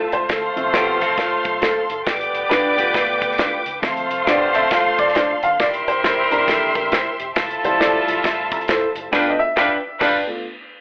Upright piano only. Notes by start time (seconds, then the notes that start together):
Already playing: A4
0.13 C5
0.30 A4
0.56 F3 C4 E5
0.74 C5
2.49 B4
2.76 A3 B3 F4
2.94 B4
3.82 F3 C4 E5
4.30 D5
4.55 E5
4.72 F5
4.99 D5
5.16 D5
5.43 F5
5.60 D5
5.88 C5
6.30 E3 A#3 D4 A#4
6.47 A4
6.75 A#4
7.64 G3 A3 E4 C5
7.80 D5
8.25 E5
9.11 A3 B3 F4
9.30 D#5
9.39 E5
10.00 D5
10.27 A3 B3 F4